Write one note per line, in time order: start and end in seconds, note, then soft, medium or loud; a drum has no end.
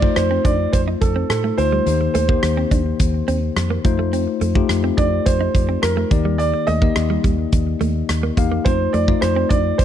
0.00 0.02 A3 medium
0.00 0.81 A3 medium
0.00 0.02 D#4 medium
0.00 0.82 D#4 medium
0.00 0.03 F4 medium
0.00 0.82 F4 medium
0.00 0.03 C5 medium
0.00 0.82 C5 medium
0.00 0.17 D5 medium
0.00 muted clean electric guitar stroke soft
0.00 kick medium
0.16 0.37 F2 medium
0.16 0.46 C5 medium
0.16 muted clean electric guitar stroke soft
0.16 cross-stick loud
0.16 closed hi-hat medium
0.31 0.41 C4 medium
0.45 0.65 F2 medium
0.45 0.55 D4 medium
0.45 0.74 D5 medium
0.45 kick medium
0.45 closed hi-hat medium
0.73 0.94 F2 medium
0.73 0.79 C5 medium
0.73 kick medium
0.73 closed hi-hat medium
0.88 0.98 D#4 medium
1.01 1.22 F2 medium
1.01 1.28 A4 medium
1.01 muted clean electric guitar stroke soft
1.01 kick medium
1.01 closed hi-hat medium
1.16 1.26 C4 medium
1.29 1.50 A2 medium
1.29 1.59 A4 medium
1.29 cross-stick medium
1.29 closed hi-hat medium
1.44 1.54 A3 medium
1.57 1.79 D2 medium
1.57 1.78 A3 medium
1.57 1.78 D#4 medium
1.57 1.78 F4 medium
1.57 2.11 C5 loud
1.57 1.78 C5 medium
1.57 muted clean electric guitar stroke soft
1.57 closed hi-hat medium
1.72 1.83 G3 medium
1.86 2.07 D#2 loud
1.86 2.67 D#3 medium
1.86 2.16 A#3 medium
1.86 2.16 D#4 medium
1.86 2.16 G4 medium
1.86 2.17 C5 medium
1.86 closed hi-hat medium
2.01 muted clean electric guitar stroke soft
2.14 2.35 D#2 medium
2.14 2.25 A3 medium
2.14 3.24 C5 medium
2.14 closed hi-hat medium
2.28 3.08 A#3 medium
2.28 2.39 A#3 medium
2.28 3.08 D#4 medium
2.28 3.08 G4 medium
2.28 3.08 C5 medium
2.28 kick medium
2.43 2.64 D#2 medium
2.43 muted clean electric guitar stroke soft
2.43 cross-stick loud
2.43 closed hi-hat medium
2.57 2.68 C4 medium
2.71 2.92 D#2 medium
2.71 2.82 D4 medium
2.71 kick medium
2.71 closed hi-hat medium
3.00 3.20 D#2 medium
3.00 kick medium
3.00 closed hi-hat medium
3.28 3.49 D#2 medium
3.28 3.38 C4 medium
3.28 closed hi-hat medium
3.56 3.77 F2 medium
3.56 cross-stick loud
3.56 closed hi-hat medium
3.70 3.81 A#3 medium
3.84 4.25 F2 medium
3.84 4.41 A3 medium
3.84 4.41 D#4 medium
3.84 4.41 F4 medium
3.84 4.42 C5 loud
3.84 muted clean electric guitar stroke soft
3.84 kick medium
3.84 closed hi-hat medium
3.99 4.09 A3 medium
4.13 4.23 C4 medium
4.13 closed hi-hat medium
4.41 4.62 F2 medium
4.41 4.52 A3 medium
4.41 closed hi-hat medium
4.55 5.34 A3 medium
4.55 5.35 D#4 medium
4.55 5.35 F4 medium
4.55 5.35 G4 medium
4.55 muted clean electric guitar stroke soft
4.55 kick medium
4.69 4.90 F2 loud
4.69 muted clean electric guitar stroke soft
4.69 cross-stick loud
4.69 closed hi-hat medium
4.84 4.94 C4 medium
4.97 5.18 F2 medium
4.97 5.08 D4 medium
4.97 5.27 D5 medium
4.97 kick medium
4.97 closed hi-hat medium
5.26 5.47 F2 loud
5.26 5.79 C5 medium
5.26 kick medium
5.26 closed hi-hat medium
5.41 5.51 D#4 medium
5.55 5.75 F2 medium
5.55 muted clean electric guitar stroke soft
5.55 kick medium
5.55 closed hi-hat medium
5.69 5.79 C4 medium
5.82 6.03 F2 medium
5.82 6.41 A#4 medium
5.82 cross-stick loud
5.82 closed hi-hat medium
5.97 6.07 A3 medium
6.11 6.52 D#2 medium
6.11 6.92 D#3 medium
6.11 6.67 A#3 medium
6.11 6.68 D#4 medium
6.11 6.68 G4 medium
6.11 6.68 D5 medium
6.11 muted clean electric guitar stroke soft
6.11 kick medium
6.11 closed hi-hat medium
6.25 6.36 G3 medium
6.38 6.68 D5 loud
6.38 closed hi-hat medium
6.54 muted clean electric guitar stroke soft
6.67 6.88 D#2 medium
6.67 6.78 A3 medium
6.67 7.20 D#5 loud
6.67 closed hi-hat medium
6.81 7.61 A#3 medium
6.81 6.92 A#3 medium
6.81 7.61 D#4 medium
6.81 7.61 G4 medium
6.81 7.61 D#5 medium
6.81 kick medium
6.96 7.16 D#2 medium
6.96 muted clean electric guitar stroke soft
6.96 cross-stick loud
6.96 closed hi-hat medium
7.10 7.20 G3 medium
7.24 7.45 D#2 medium
7.24 7.35 G3 medium
7.24 kick medium
7.24 closed hi-hat medium
7.52 7.73 D#2 loud
7.52 kick medium
7.52 closed hi-hat medium
7.81 8.01 D#2 medium
7.81 7.91 A3 medium
7.81 closed hi-hat medium
8.09 8.30 D#2 medium
8.09 cross-stick medium
8.09 closed hi-hat medium
8.23 8.34 A#3 medium
8.37 8.58 E2 medium
8.37 8.57 A#3 medium
8.37 8.57 D#4 medium
8.37 8.57 G4 medium
8.37 8.58 F5 medium
8.37 muted clean electric guitar stroke soft
8.37 kick medium
8.37 closed hi-hat medium
8.52 8.62 A#3 medium
8.65 8.86 F2 medium
8.65 8.95 A3 medium
8.65 8.76 C4 medium
8.65 8.96 D#4 medium
8.65 8.96 F4 medium
8.65 8.92 C5 loud
8.65 8.96 C5 medium
8.65 kick medium
8.65 closed hi-hat medium
8.93 9.14 F2 medium
8.93 9.04 A3 medium
8.93 9.20 D5 medium
8.93 closed hi-hat medium
9.08 9.85 A3 medium
9.08 9.85 D#4 medium
9.08 9.85 F4 medium
9.08 9.85 D5 medium
9.08 muted clean electric guitar stroke soft
9.08 kick medium
9.21 9.43 F2 medium
9.21 9.48 C5 medium
9.21 muted clean electric guitar stroke soft
9.21 cross-stick loud
9.21 closed hi-hat medium
9.36 9.47 C4 medium
9.49 9.71 F2 medium
9.49 9.61 D4 medium
9.49 9.79 D5 loud
9.49 kick medium
9.49 closed hi-hat medium
9.78 9.85 F2 medium
9.78 9.85 C5 medium
9.78 kick medium
9.78 closed hi-hat medium